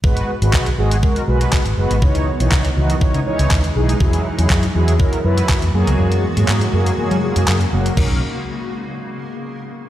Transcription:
0.04 0.21 G#1 loud
0.04 2.00 D#3 medium
0.04 0.31 G#3 medium
0.04 7.93 G#3 medium
0.04 2.00 B3 medium
0.04 2.00 F#4 medium
0.04 0.31 F#4 medium
0.04 0.31 B4 loud
0.04 kick loud
0.17 closed hi-hat medium
0.42 0.50 G#1 loud
0.42 0.68 G#3 medium
0.42 0.68 F#4 medium
0.42 0.69 B4 medium
0.42 closed hi-hat medium
0.53 kick loud
0.53 clap loud
0.66 closed hi-hat medium
0.78 1.04 G#1 medium
0.78 0.96 G#3 medium
0.78 0.97 F#4 medium
0.78 0.97 G#4 medium
0.91 closed hi-hat medium
1.03 1.21 G#3 medium
1.03 1.21 F#4 medium
1.03 1.21 A#4 medium
1.03 kick loud
1.16 closed hi-hat medium
1.27 1.45 B1 medium
1.27 1.64 G#3 medium
1.27 1.64 F#4 medium
1.27 1.64 B4 medium
1.41 closed hi-hat medium
1.53 kick loud
1.53 clap loud
1.66 1.74 G#1 medium
1.66 closed hi-hat medium
1.77 1.87 F#1 medium
1.77 1.96 G#3 medium
1.77 1.96 F#4 medium
1.77 1.96 B4 medium
1.91 1.99 G#1 medium
1.91 closed hi-hat medium
2.02 2.28 C#2 loud
2.02 3.99 C#3 medium
2.02 2.29 E3 medium
2.02 5.70 E3 medium
2.02 3.99 D#4 medium
2.02 2.29 D#4 medium
2.02 2.29 C#5 medium
2.02 kick loud
2.15 closed hi-hat medium
2.40 2.48 B1 medium
2.40 2.67 E3 medium
2.40 2.67 D#4 medium
2.40 2.67 C#5 medium
2.40 closed hi-hat medium
2.52 kick loud
2.52 clap loud
2.65 closed hi-hat medium
2.76 2.94 C#2 medium
2.76 2.95 E3 medium
2.76 2.95 D#4 medium
2.76 2.95 F#4 medium
2.90 closed hi-hat medium
3.01 3.19 E3 medium
3.01 3.20 D#4 medium
3.01 3.20 C#5 loud
3.01 muted fingered electric bass stroke soft
3.01 kick loud
3.14 3.23 C#3 medium
3.14 closed hi-hat medium
3.26 3.62 E3 medium
3.26 3.62 D#4 medium
3.26 3.63 C#5 loud
3.39 3.47 C#2 medium
3.39 closed hi-hat medium
3.51 3.68 D#2 loud
3.51 kick loud
3.51 clap loud
3.64 closed hi-hat medium
3.75 3.93 B1 medium
3.75 3.94 E3 medium
3.75 3.94 D#4 medium
3.75 3.94 G#4 medium
3.89 closed hi-hat medium
4.00 4.18 E2 loud
4.00 4.27 F#3 medium
4.00 5.72 B3 medium
4.00 4.27 E4 medium
4.00 7.93 F#4 medium
4.00 4.27 G#4 loud
4.00 kick loud
4.13 closed hi-hat medium
4.38 4.46 E2 medium
4.38 4.65 F#3 medium
4.38 4.65 E4 medium
4.38 4.65 G#4 medium
4.38 closed hi-hat medium
4.50 4.67 F#2 medium
4.50 kick loud
4.50 clap loud
4.63 closed hi-hat medium
4.75 5.01 E2 medium
4.75 4.93 F#3 medium
4.75 4.93 E4 medium
4.75 4.93 G#4 loud
4.88 closed hi-hat medium
4.99 5.18 F#3 medium
4.99 5.18 E4 medium
4.99 5.18 A#4 loud
4.99 kick loud
5.13 closed hi-hat soft
5.24 5.42 F#2 medium
5.24 5.61 F#3 medium
5.24 5.61 E4 medium
5.24 5.61 B4 loud
5.38 closed hi-hat medium
5.49 kick loud
5.49 clap loud
5.62 5.70 E2 medium
5.62 closed hi-hat medium
5.74 5.83 F#2 loud
5.74 7.95 C#3 medium
5.74 6.24 F#3 medium
5.74 6.24 A#3 medium
5.74 7.95 A#3 medium
5.74 6.24 G#4 loud
5.87 5.95 C#2 medium
5.87 closed hi-hat medium
5.99 6.25 F#2 loud
6.12 closed hi-hat medium
6.37 6.45 G#2 medium
6.37 6.63 F#3 medium
6.37 6.63 A#3 medium
6.37 6.64 G#4 loud
6.37 closed hi-hat medium
6.48 6.66 G#2 loud
6.48 clap loud
6.61 closed hi-hat medium
6.73 6.90 F#2 loud
6.73 6.91 F#3 medium
6.73 6.91 A#3 medium
6.73 6.92 G#4 loud
6.86 closed hi-hat medium
6.98 7.16 F#3 medium
6.98 7.16 A#3 medium
6.98 7.16 G#4 medium
6.98 muted fingered electric bass stroke soft
7.11 7.19 F#3 medium
7.11 closed hi-hat medium
7.22 7.59 F#3 medium
7.22 7.59 A#3 medium
7.22 7.59 G#4 loud
7.36 7.44 F#2 medium
7.36 closed hi-hat medium
7.48 7.65 F#2 loud
7.48 clap loud
7.61 closed hi-hat medium
7.72 7.90 F#1 medium
7.72 7.91 F#3 medium
7.72 7.91 A#3 medium
7.72 7.91 F#4 medium
7.86 closed hi-hat medium
7.97 8.20 B1 loud
7.97 8.20 D#3 medium
7.97 8.20 C#4 medium
7.97 8.20 A#4 medium
7.97 kick loud
7.97 crash medium

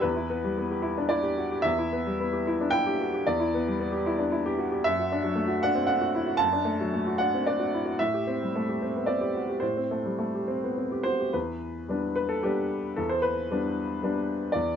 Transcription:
0.00 1.61 E2 soft
0.00 0.13 G4 soft
0.00 0.84 B4 medium
0.16 0.38 E4 soft
0.30 0.52 B3 medium
0.44 0.66 G3 soft
0.58 0.80 B3 soft
0.71 0.93 G4 soft
0.82 1.05 E4 medium
0.98 1.12 D4 soft
1.09 1.32 E4 soft
1.09 1.64 D5 medium
1.23 1.46 G4 medium
1.38 1.52 F#4 soft
1.52 1.73 G4 soft
1.62 3.21 E2 medium
1.62 2.70 E5 medium
1.78 2.00 E4 soft
1.93 2.14 B3 soft
2.07 2.28 G3 soft
2.20 2.41 B3 soft
2.33 2.54 G4 soft
2.47 2.68 E4 soft
2.61 2.73 D4 soft
2.71 2.94 E4 soft
2.71 3.25 G5 medium
2.86 3.07 G4 soft
3.01 3.13 F#4 soft
3.14 3.34 G4 soft
3.27 4.81 E2 medium
3.27 4.05 D5 medium
3.40 3.60 E4 soft
3.54 3.74 B3 medium
3.68 3.88 G3 soft
3.80 4.00 B3 medium
3.92 4.13 G4 soft
4.06 4.27 E4 medium
4.19 4.31 D4 soft
4.32 4.53 E4 soft
4.46 4.66 G4 medium
4.58 4.71 F#4 soft
4.72 4.85 G4 soft
4.84 6.37 F#2 medium
4.84 5.62 E5 medium
4.99 5.19 F#4 soft
5.12 5.32 D4 soft
5.24 5.44 F#3 soft
5.35 5.56 A3 soft
5.48 5.69 F#4 soft
5.63 5.84 D4 soft
5.63 5.85 F#5 medium
5.75 5.88 C4 soft
5.87 6.09 D4 soft
5.87 6.40 F#5 medium
6.01 6.22 F#4 medium
6.15 6.28 E4 soft
6.26 6.48 F#4 soft
6.37 7.93 F#2 medium
6.37 7.18 A5 medium
6.53 6.74 D4 soft
6.65 6.87 A3 soft
6.81 7.01 F#3 soft
6.93 7.14 A3 soft
7.07 7.28 F#4 soft
7.18 7.41 D4 soft
7.18 7.45 F#5 medium
7.34 7.47 C4 soft
7.46 7.68 D4 soft
7.46 7.99 D5 medium
7.59 7.80 F#4 soft
7.74 7.86 E4 soft
7.85 7.98 F#4 soft
7.99 9.59 A2 soft
7.99 9.06 E5 medium
8.14 8.34 G4 soft
8.27 8.47 C4 soft
8.43 8.62 G3 soft
8.56 8.75 A3 soft
8.69 8.88 G4 soft
8.82 9.02 C4 soft
8.96 9.08 B3 soft
9.06 9.29 C4 soft
9.06 9.62 D5 medium
9.21 9.43 G4 soft
9.35 9.49 F#4 soft
9.49 9.72 G4 soft
9.60 11.30 A2 soft
9.60 11.02 C5 soft
9.77 10.00 C4 soft
9.91 10.14 A3 soft
10.06 10.29 G3 soft
10.19 10.42 A3 soft
10.35 10.58 G4 soft
10.48 10.71 C4 soft
10.64 10.78 B3 soft
10.78 11.00 C4 soft
10.92 11.14 G4 soft
11.03 11.20 F#4 soft
11.03 11.33 C5 medium
11.20 11.34 G4 soft
11.33 11.88 E2 soft
11.33 12.14 B4 soft
11.88 12.39 G3 soft
11.88 12.40 B3 soft
11.88 12.40 D4 soft
12.16 12.30 B4 medium
12.29 12.43 A4 medium
12.43 12.94 G3 soft
12.43 12.94 B3 soft
12.43 12.95 D4 soft
12.43 12.98 G4 medium
12.96 13.50 E2 soft
12.96 13.11 A4 medium
13.09 13.24 C5 medium
13.22 14.28 B4 medium
13.51 13.99 G3 soft
13.51 14.00 B3 soft
13.51 14.00 D4 soft
14.03 14.51 G3 soft
14.03 14.51 B3 soft
14.03 14.52 D4 soft
14.52 14.76 E2 soft
14.52 14.76 D5 medium

